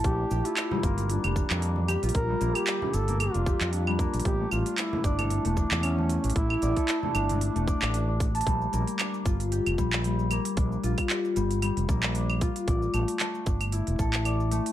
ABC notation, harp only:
X:1
M:4/4
L:1/16
Q:"Swing 16ths" 1/4=114
K:none
V:1 name="Harp"
z D G F2 G, _B,3 G,2 B, z D G F- | F G, _B,3 G,2 B, z D G F2 G, B,2 | z A,2 D z E d A2 A, D3 A,2 D | z E d A2 A, D3 A, d D D D z a |
G, z _B, z D2 F z G2 G, z G, z B, z | D2 F z G2 G, z G, z _B, z D2 F z | d2 A, z A, z D z E2 A z d2 A, z |]